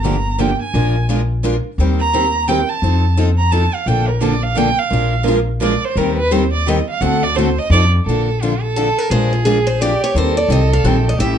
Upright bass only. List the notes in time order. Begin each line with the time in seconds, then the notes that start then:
Already playing: G1
0.74 A#1
1.78 D#2
2.82 F2
3.86 A#1
4.91 A#1
5.96 D#2
7.01 D2
7.70 F2
8.06 A#1
9.10 A#1
10.14 D#2
10.48 C2
10.84 A#1
11.18 A1